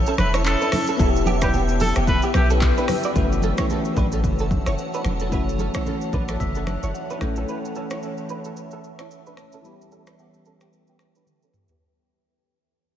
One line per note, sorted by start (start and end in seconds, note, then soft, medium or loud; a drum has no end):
0.00 0.40 C#4 medium
0.00 0.42 E4 medium
0.00 0.43 A4 medium
0.00 0.96 C#5 medium
0.00 3.12 E5 medium
0.00 0.97 A5 medium
0.00 3.12 E6 medium
0.06 0.14 C#4 medium
0.06 0.14 A4 medium
0.06 shaker medium
0.18 0.55 E1 loud
0.18 0.32 B4 medium
0.18 finger snap medium
0.18 cross-stick loud
0.18 high conga medium
0.18 shaker medium
0.34 0.41 E4 medium
0.34 0.40 C#5 medium
0.34 finger snap medium
0.34 cross-stick medium
0.34 shaker medium
0.44 0.99 C#4 medium
0.44 0.98 E4 soft
0.44 0.86 A4 medium
0.44 1.00 A4 medium
0.44 clap loud
0.44 shaker medium
0.62 0.68 D4 medium
0.62 0.67 B4 medium
0.62 shaker medium
0.72 finger snap medium
0.72 cross-stick loud
0.72 open hi-hat medium
0.72 high conga medium
0.72 low conga medium
0.72 shaker medium
0.87 0.95 C#4 medium
0.87 0.95 A4 medium
0.87 shaker loud
0.97 1.92 E1 loud
0.97 2.31 B3 medium
0.97 2.32 E4 medium
0.97 1.09 E4 medium
0.97 1.08 A4 medium
0.97 3.13 B4 medium
0.97 3.13 G5 medium
0.97 kick loud
0.97 shaker medium
1.02 1.08 F#4 medium
1.08 2.35 G4 medium
1.16 shaker medium
1.26 1.36 B3 medium
1.26 1.35 G4 medium
1.26 high conga medium
1.26 shaker medium
1.42 1.49 D4 medium
1.42 1.52 G4 medium
1.42 1.49 B4 medium
1.42 finger snap loud
1.42 kick loud
1.42 cross-stick loud
1.42 shaker loud
1.54 1.63 B3 medium
1.54 1.62 G4 medium
1.54 low conga medium
1.54 shaker medium
1.69 shaker medium
1.80 1.90 C#4 medium
1.80 1.89 A4 medium
1.80 1.95 A4 medium
1.80 open hi-hat medium
1.80 high conga medium
1.80 low conga medium
1.80 shaker medium
1.96 2.20 E1 medium
1.96 2.03 B3 medium
1.96 2.03 G4 medium
1.96 finger snap medium
1.96 cross-stick medium
1.96 shaker loud
2.07 2.22 B4 medium
2.07 kick loud
2.07 low conga medium
2.07 shaker medium
2.22 2.30 B3 medium
2.22 2.29 G4 medium
2.22 shaker medium
2.34 2.72 B1 medium
2.34 3.15 B3 soft
2.34 3.16 E4 soft
2.34 2.49 G4 medium
2.34 3.16 G4 medium
2.34 finger snap medium
2.34 cross-stick loud
2.34 high conga medium
2.34 shaker soft
2.50 2.57 C#4 medium
2.50 2.56 A4 medium
2.50 shaker medium
2.61 kick loud
2.61 clap loud
2.61 shaker medium
2.78 2.84 D4 medium
2.78 2.84 B4 medium
2.78 shaker medium
2.88 finger snap medium
2.88 cross-stick loud
2.88 open hi-hat medium
2.88 high conga medium
2.88 low conga medium
2.88 shaker medium
3.03 3.11 F#4 medium
3.03 3.11 D5 medium
3.03 shaker loud
3.13 3.53 F#1 loud
3.13 5.27 E3 medium
3.13 5.28 A3 medium
3.13 5.28 C#4 medium
3.13 3.25 E4 medium
3.13 3.24 B4 medium
3.13 9.61 C#5 medium
3.13 7.17 F#5 medium
3.13 7.17 A5 medium
3.13 5.30 E6 medium
3.13 kick loud
3.13 shaker medium
3.18 5.29 F#4 medium
3.32 shaker medium
3.42 3.52 C#4 medium
3.42 3.52 A4 medium
3.42 high conga medium
3.42 shaker soft
3.58 3.65 E4 medium
3.58 3.65 C#5 medium
3.58 finger snap medium
3.58 kick loud
3.58 cross-stick loud
3.58 shaker loud
3.70 3.79 C#4 medium
3.70 3.79 A4 medium
3.70 low conga medium
3.70 shaker medium
3.85 shaker medium
3.97 4.25 A1 medium
3.97 4.06 D4 medium
3.97 4.06 B4 medium
3.97 kick loud
3.97 high conga medium
3.97 low conga medium
3.97 shaker medium
4.12 4.20 C#4 medium
4.12 4.19 A4 medium
4.12 shaker medium
4.24 4.61 F#1 medium
4.24 kick loud
4.24 low conga medium
4.24 shaker medium
4.39 4.47 C#4 medium
4.39 4.46 A4 medium
4.39 shaker medium
4.51 kick medium
4.51 high conga medium
4.51 shaker soft
4.66 4.76 F#1 medium
4.66 4.74 E4 medium
4.66 4.73 C#5 medium
4.66 finger snap medium
4.66 cross-stick medium
4.66 shaker medium
4.78 shaker medium
4.94 5.01 D4 medium
4.94 5.00 B4 medium
4.94 shaker medium
5.04 5.34 E1 medium
5.04 finger snap medium
5.04 cross-stick medium
5.04 high conga medium
5.04 low conga medium
5.04 shaker medium
5.20 5.28 C#4 medium
5.20 5.27 A4 medium
5.20 high conga soft
5.20 shaker loud
5.29 5.69 F#1 loud
5.29 7.16 E3 medium
5.29 7.17 A3 medium
5.29 7.18 C#4 medium
5.29 5.41 B4 medium
5.29 7.19 F#6 medium
5.29 kick loud
5.29 shaker medium
5.34 5.41 E4 medium
5.34 7.19 F#4 medium
5.49 shaker medium
5.58 5.68 C#4 medium
5.58 5.68 A4 medium
5.58 high conga medium
5.58 shaker soft
5.74 5.82 E4 medium
5.74 5.81 C#5 medium
5.74 finger snap medium
5.74 kick medium
5.74 cross-stick loud
5.74 shaker loud
5.86 5.96 C#4 medium
5.86 5.95 A4 medium
5.86 low conga medium
5.86 shaker medium
6.01 shaker soft
6.13 6.36 A1 medium
6.13 6.23 D4 medium
6.13 6.22 B4 medium
6.13 6.28 D5 medium
6.13 kick medium
6.13 high conga medium
6.13 low conga medium
6.13 shaker medium
6.29 6.36 C#4 medium
6.29 6.35 A4 medium
6.29 6.39 E5 medium
6.29 finger snap medium
6.29 cross-stick medium
6.29 shaker loud
6.40 6.77 F#1 medium
6.40 6.90 E5 medium
6.40 kick loud
6.40 low conga medium
6.40 shaker medium
6.55 6.63 C#4 medium
6.55 6.62 A4 medium
6.55 shaker medium
6.67 finger snap medium
6.67 cross-stick medium
6.67 high conga medium
6.67 shaker medium
6.83 6.93 F#1 medium
6.83 6.90 E4 medium
6.83 6.89 C#5 medium
6.83 shaker medium
6.94 7.19 F#5 medium
6.94 shaker medium
7.10 7.17 D4 medium
7.10 7.16 B4 medium
7.10 shaker medium
7.19 7.45 A1 loud
7.19 9.32 E3 medium
7.19 9.33 A3 medium
7.19 9.34 C#4 medium
7.19 11.77 E5 medium
7.19 7.46 G5 medium
7.19 9.62 A5 medium
7.19 11.77 E6 medium
7.19 finger snap medium
7.19 cross-stick medium
7.19 high conga medium
7.19 low conga medium
7.19 shaker medium
7.24 9.35 A4 medium
7.36 7.44 C#4 medium
7.36 7.43 A4 medium
7.36 high conga soft
7.36 shaker medium
7.48 7.58 E4 medium
7.48 7.57 B4 medium
7.48 shaker medium
7.65 shaker medium
7.75 7.85 C#4 medium
7.75 7.84 A4 medium
7.75 shaker soft
7.91 7.98 E4 medium
7.91 7.97 C#5 medium
7.91 finger snap medium
7.91 cross-stick loud
7.91 shaker loud
8.03 8.12 C#4 medium
8.03 8.11 A4 medium
8.03 shaker medium
8.18 shaker soft
8.29 8.39 D4 medium
8.29 8.38 B4 medium
8.29 shaker medium
8.45 8.52 C#4 medium
8.45 8.52 A4 medium
8.45 shaker medium
8.57 shaker medium
8.71 8.79 C#4 medium
8.71 8.79 A4 medium
8.71 shaker medium
8.84 shaker soft
8.99 9.06 E4 medium
8.99 9.06 C#5 medium
8.99 finger snap medium
8.99 cross-stick medium
8.99 shaker medium
9.11 shaker medium
9.26 9.33 D4 medium
9.26 9.33 B4 medium
9.26 shaker medium
9.37 finger snap medium
9.37 cross-stick medium
9.37 shaker medium
9.52 9.60 C#4 medium
9.52 9.60 A4 medium
9.52 shaker medium
9.62 11.76 E3 medium
9.62 11.76 G3 medium
9.62 11.77 B3 medium
9.62 9.74 E4 medium
9.62 11.79 B4 medium
9.62 9.73 B4 medium
9.62 11.79 G5 medium
9.62 shaker medium
9.67 11.78 G4 medium
9.81 shaker medium
9.92 10.01 C#4 medium
9.92 10.00 A4 medium
9.92 shaker soft
10.07 10.14 D4 medium
10.07 10.14 B4 medium
10.07 finger snap medium
10.07 cross-stick loud
10.07 shaker loud
10.19 10.28 B3 medium
10.19 10.27 G4 medium
10.19 shaker medium
10.34 shaker soft
10.45 10.55 C#4 medium
10.45 10.54 A4 medium
10.45 shaker medium
10.61 10.68 B3 medium
10.61 10.68 G4 medium
10.61 finger snap medium
10.61 cross-stick medium
10.61 shaker loud
10.73 shaker medium
10.87 10.95 B3 soft
10.87 10.95 G4 medium
10.87 shaker medium
10.99 finger snap medium
10.99 cross-stick medium
10.99 shaker soft
11.15 11.23 D4 medium
11.15 11.22 B4 medium
11.15 shaker medium
11.27 high tom medium
11.27 shaker medium
11.42 11.50 C#4 medium
11.42 11.49 A4 medium
11.42 shaker medium
11.54 mid tom medium
11.54 shaker medium
11.68 11.77 B3 medium
11.68 11.76 G4 medium
11.68 floor tom medium
11.68 shaker medium